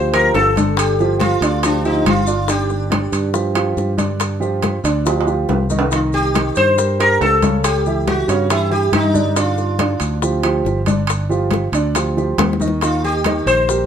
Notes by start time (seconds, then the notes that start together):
Already playing: D2 C5
0.13 F3 F4 G4 A#4, high bongo, high conga, high timbale, maracas
0.34 G1 A4, high bongo, low bongo, high conga, low timbale, maracas
0.56 D3 D4 D5, high bongo, high conga, high timbale, maracas
0.77 G4, high bongo, high timbale, maracas
0.99 F3 F4 G4, high bongo, high conga, maracas
1.19 F4, high bongo, high conga, high timbale, maracas
1.41 D2 D3 D4 D5, high conga, high timbale, maracas
1.63 F3 D4 F4 G4, high bongo, high conga, high timbale, maracas
1.85 F3 D#4 F4 G4, high bongo, high conga, maracas
2.05 G1 F4, high bongo, low bongo, high conga, high timbale, maracas
2.27 D3 D4 D5, high bongo, maracas
2.48 D3 D4 G4 D5, high bongo, high conga, high timbale, maracas
2.70 high bongo, high conga, maracas
2.90 D3 D4 D5, high bongo, high conga, high timbale, maracas
3.12 G2, high timbale, maracas
3.33 F3 F4 G4, high bongo, high conga, maracas
3.55 F3 F4 G4, high bongo, high conga, high timbale, maracas
3.77 G2, high bongo, low bongo, high conga, maracas
3.97 D3 D4 D5, high bongo, high conga, high timbale, maracas
4.19 high bongo, high conga, high timbale, maracas
4.40 F3 F4 G4, high bongo, high conga, maracas
4.62 high bongo, high conga, high timbale, maracas
4.84 D2 D3 D4 D5, high conga, high timbale, maracas
5.05 F3 F4 G4, high bongo, high conga, high timbale, maracas
5.21 high timbale
5.26 F3 F4 G4, high bongo, high conga, maracas
5.49 C2, high bongo, low bongo, high conga, low timbale, maracas
5.70 D#3 D#4 D#5, high bongo, high conga, maracas
5.79 low timbale
5.91 D#3 D#4 F4 D#5, high bongo, high conga, high timbale, maracas
6.13 G4, high bongo, high conga, maracas
6.34 D#3 D#4 D#5, high bongo, high conga, high timbale, maracas
6.55 G2 C5, high timbale, maracas
6.77 G3 G4 A#4, high bongo, high conga, maracas
6.99 G3 G4 A#4, high bongo, high conga, high timbale, maracas
7.21 C#2 A4, high bongo, low bongo, high conga, low timbale, maracas
7.42 C#3 C#4 C#5, high bongo, high conga, high timbale, maracas
7.64 G4, high bongo, high conga, high timbale, maracas
7.86 E3 E4 G4, high bongo, high conga, maracas
8.08 F#4, high bongo, high conga, high timbale, maracas
8.28 G2 C#3 C#4 C#5, high conga, high timbale, maracas
8.50 E3 E4 G4, high bongo, high conga, high timbale, maracas
8.71 E3 E4 G4, high bongo, high conga, maracas
8.92 G2 D#4, high bongo, low bongo, high conga, high timbale, maracas
9.14 D3 D4 D5, high bongo, high conga, maracas
9.36 D3 D4 F4 D5, high bongo, high conga, high timbale, maracas
9.57 high bongo, high conga, maracas
9.79 D3 D4 D5, high bongo, high conga, high timbale, maracas
10.00 D2, high timbale, maracas
10.22 F3 F4 G4, high bongo, high conga, maracas
10.43 F3 F4 G4, high bongo, high conga, high timbale, maracas
10.65 G1, high bongo, low bongo, high conga, maracas
10.86 D3 D4 D5, high bongo, high conga, high timbale, maracas
11.07 high bongo, high conga, high timbale, maracas
11.29 F3 F4 G4, high bongo, high conga, maracas
11.51 high bongo, high conga, high timbale, maracas
11.72 D2 D3 D4 D5, high conga, high timbale, maracas
11.95 F3 F4 G4, high bongo, high conga, high timbale, maracas
12.17 F3 F4 G4, high bongo, high conga, maracas
12.38 D#2, high bongo, high conga, high timbale, low timbale, maracas
12.53 low bongo
12.60 D#3 D#4 D#5, high conga, maracas
12.68 low bongo
12.81 D#3 D#4 F4 D#5, high bongo, high conga, high timbale, maracas
13.03 G4, high bongo, high conga, maracas
13.24 D#3 D#4 D#5, high bongo, high conga, high timbale, maracas
13.46 A#1 C5, high timbale, maracas
13.69 G3 G4 A#4, high bongo, high conga, maracas